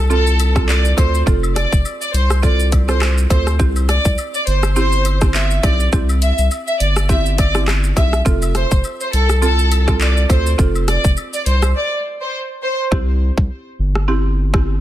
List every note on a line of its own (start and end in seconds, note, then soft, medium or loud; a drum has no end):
0.00 0.94 C2 medium
0.10 0.31 C4 medium
0.10 0.31 F4 medium
0.10 0.53 A4 medium
0.10 0.32 A4 loud
0.10 shaker medium
0.27 shaker medium
0.40 closed hi-hat medium
0.40 cabasa medium
0.40 high woodblock medium
0.40 shaker medium
0.55 0.75 C4 medium
0.55 0.75 F4 medium
0.55 0.75 A4 medium
0.55 kick loud
0.55 cross-stick medium
0.55 shaker medium
0.69 0.82 D5 medium
0.69 clap loud
0.69 shaker medium
0.85 shaker medium
0.97 1.23 D2 medium
0.97 1.18 C4 medium
0.97 1.19 F4 medium
0.97 1.19 A4 medium
0.97 1.11 C5 medium
0.97 kick medium
0.97 closed hi-hat medium
0.97 cabasa medium
0.97 high woodblock medium
0.97 shaker medium
1.15 shaker medium
1.26 1.66 F1 loud
1.26 1.81 C4 medium
1.26 1.81 F4 medium
1.26 1.81 A4 loud
1.26 kick loud
1.26 shaker medium
1.43 high woodblock medium
1.43 shaker medium
1.55 1.69 D5 medium
1.55 cross-stick medium
1.55 closed hi-hat medium
1.55 cabasa medium
1.55 shaker medium
1.73 1.84 F1 loud
1.73 kick loud
1.73 shaker medium
1.85 high woodblock medium
1.85 shaker medium
2.01 2.12 D5 medium
2.01 shaker medium
2.14 3.26 C2 medium
2.14 2.28 C5 medium
2.14 closed hi-hat medium
2.14 cabasa medium
2.14 shaker medium
2.30 cross-stick medium
2.30 high woodblock medium
2.30 shaker medium
2.43 2.64 C4 medium
2.43 2.64 F4 medium
2.43 2.64 A4 loud
2.43 2.57 D5 medium
2.43 kick medium
2.43 shaker medium
2.60 shaker medium
2.72 kick medium
2.72 closed hi-hat medium
2.72 cabasa medium
2.72 high woodblock medium
2.72 shaker medium
2.88 3.08 C4 medium
2.88 3.08 F4 medium
2.88 3.08 A4 medium
2.88 2.99 C5 medium
2.88 cross-stick medium
2.88 shaker medium
3.02 cross-stick loud
3.02 clap loud
3.02 shaker medium
3.18 shaker medium
3.30 3.61 D2 loud
3.30 3.52 C4 medium
3.30 3.52 F4 medium
3.30 3.52 A4 medium
3.30 3.44 C5 medium
3.30 kick loud
3.30 closed hi-hat medium
3.30 cabasa medium
3.30 high woodblock medium
3.30 shaker medium
3.47 cross-stick medium
3.47 shaker medium
3.59 3.99 C2 loud
3.59 4.14 C4 medium
3.59 4.14 E4 medium
3.59 4.14 G4 loud
3.59 kick loud
3.59 shaker medium
3.76 high woodblock medium
3.76 shaker medium
3.89 4.02 D5 medium
3.89 cross-stick medium
3.89 closed hi-hat medium
3.89 cabasa medium
3.89 shaker medium
4.05 4.16 C2 medium
4.05 kick loud
4.05 shaker medium
4.18 high woodblock medium
4.18 shaker medium
4.34 4.45 D5 medium
4.34 shaker medium
4.47 5.60 G1 medium
4.47 4.61 C5 medium
4.47 closed hi-hat medium
4.47 cabasa medium
4.47 shaker medium
4.63 cross-stick medium
4.63 high woodblock medium
4.63 shaker medium
4.76 4.97 C4 medium
4.76 4.98 E4 medium
4.76 4.98 G4 loud
4.76 5.19 C5 loud
4.76 shaker medium
4.92 shaker medium
5.05 closed hi-hat medium
5.05 cabasa medium
5.05 high woodblock medium
5.05 shaker medium
5.21 5.41 C4 medium
5.21 5.41 E4 medium
5.21 5.41 G4 medium
5.21 kick loud
5.21 cross-stick medium
5.21 shaker medium
5.34 5.48 E5 medium
5.34 clap loud
5.34 shaker medium
5.51 shaker medium
5.63 5.89 B1 loud
5.63 5.85 C4 medium
5.63 5.85 E4 medium
5.63 5.85 G4 medium
5.63 5.77 D5 medium
5.63 kick loud
5.63 closed hi-hat medium
5.63 cabasa medium
5.63 high woodblock medium
5.63 shaker medium
5.80 shaker medium
5.93 6.32 C2 loud
5.93 6.47 C4 medium
5.93 6.47 E4 medium
5.93 6.47 G4 loud
5.93 kick loud
5.93 shaker medium
6.09 high woodblock medium
6.09 shaker medium
6.22 6.36 E5 medium
6.22 closed hi-hat medium
6.22 cabasa medium
6.22 shaker medium
6.38 6.49 C2 loud
6.38 shaker medium
6.51 high woodblock medium
6.51 shaker medium
6.67 6.78 E5 medium
6.67 shaker medium
6.80 7.93 G1 medium
6.80 6.94 D5 medium
6.80 closed hi-hat medium
6.80 cabasa medium
6.80 shaker medium
6.96 cross-stick loud
6.96 high woodblock medium
6.96 shaker medium
7.09 7.30 C4 loud
7.09 7.31 E4 medium
7.09 7.31 G4 loud
7.09 7.23 E5 medium
7.09 kick medium
7.09 shaker medium
7.26 shaker medium
7.38 7.52 D5 medium
7.38 kick medium
7.38 closed hi-hat medium
7.38 cabasa medium
7.38 high woodblock medium
7.38 shaker medium
7.54 7.74 C4 medium
7.54 7.74 E4 medium
7.54 7.74 G4 medium
7.54 cross-stick medium
7.54 shaker medium
7.68 cross-stick loud
7.68 clap loud
7.68 shaker medium
7.84 shaker medium
7.96 8.22 B1 medium
7.96 8.18 C4 medium
7.96 8.18 E4 medium
7.96 8.18 G4 medium
7.96 8.10 E5 medium
7.96 kick medium
7.96 closed hi-hat medium
7.96 cabasa medium
7.96 high woodblock medium
7.96 shaker medium
8.13 cross-stick medium
8.13 shaker medium
8.25 8.65 F1 loud
8.25 8.80 C4 medium
8.25 8.80 F4 medium
8.25 8.80 A4 loud
8.25 kick loud
8.25 shaker medium
8.42 high woodblock medium
8.42 shaker medium
8.55 8.69 C5 medium
8.55 cross-stick medium
8.55 closed hi-hat medium
8.55 cabasa medium
8.55 shaker medium
8.71 8.82 F1 loud
8.71 kick loud
8.71 shaker medium
8.84 high woodblock medium
8.84 shaker medium
9.01 9.11 C5 medium
9.01 shaker medium
9.13 10.26 C2 medium
9.13 9.27 A4 medium
9.13 closed hi-hat medium
9.13 cabasa medium
9.13 shaker medium
9.30 cross-stick medium
9.30 high woodblock medium
9.30 shaker medium
9.42 9.63 C4 medium
9.42 9.63 F4 medium
9.42 9.64 A4 loud
9.42 9.85 A4 loud
9.42 shaker medium
9.59 shaker medium
9.72 closed hi-hat medium
9.72 cabasa medium
9.72 high woodblock medium
9.72 shaker medium
9.87 10.07 C4 medium
9.87 10.07 F4 medium
9.87 10.07 A4 medium
9.87 kick loud
9.87 cross-stick medium
9.87 shaker medium
10.01 10.14 D5 medium
10.01 clap loud
10.01 shaker medium
10.17 shaker medium
10.29 10.55 D2 loud
10.29 10.51 C4 medium
10.29 10.51 F4 medium
10.29 10.51 A4 medium
10.29 10.44 C5 medium
10.29 kick loud
10.29 closed hi-hat medium
10.29 cabasa medium
10.29 high woodblock medium
10.29 shaker medium
10.46 shaker medium
10.58 10.98 F1 loud
10.58 11.13 C4 medium
10.58 11.13 F4 medium
10.58 11.13 A4 loud
10.58 kick loud
10.58 shaker medium
10.75 high woodblock medium
10.75 shaker medium
10.88 11.02 D5 medium
10.88 cross-stick medium
10.88 closed hi-hat medium
10.88 cabasa medium
10.88 shaker medium
11.05 11.16 F1 loud
11.05 kick loud
11.05 shaker medium
11.17 high woodblock medium
11.17 shaker medium
11.34 11.44 D5 medium
11.34 shaker medium
11.46 11.74 C2 medium
11.46 11.60 C5 medium
11.46 closed hi-hat medium
11.46 cabasa medium
11.46 shaker medium
11.62 cross-stick medium
11.62 high woodblock medium
11.62 shaker medium
11.76 11.89 D5 medium
12.21 12.32 C5 medium
12.63 12.77 C5 medium
12.91 13.31 C2 loud
12.91 13.46 C4 medium
12.91 13.46 E4 medium
12.91 13.46 G4 loud
12.91 kick loud
13.38 13.49 C2 medium
13.38 kick loud
13.79 14.81 G1 loud
13.95 cross-stick medium
14.08 14.29 C4 medium
14.08 14.29 E4 medium
14.08 14.30 G4 loud
14.53 14.73 C4 medium
14.53 14.73 E4 medium
14.53 14.73 G4 medium
14.53 kick medium
14.53 cross-stick medium